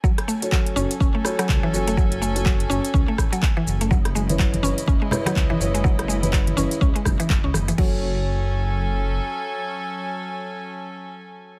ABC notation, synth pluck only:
X:1
M:4/4
L:1/16
Q:"Swing 16ths" 1/4=124
K:F#dor
V:1 name="Synth pluck" clef=bass
F, z A, z F, z C z C A, z F, z E, z A, | F, z A, z F, z C z C A, z F, z E, z A, | F, z G, z F, z C z C G, z F, z E, z G, | F, z G, z F, z C z C G, z E, z C z E, |
F,2 z12 z2 | z16 |]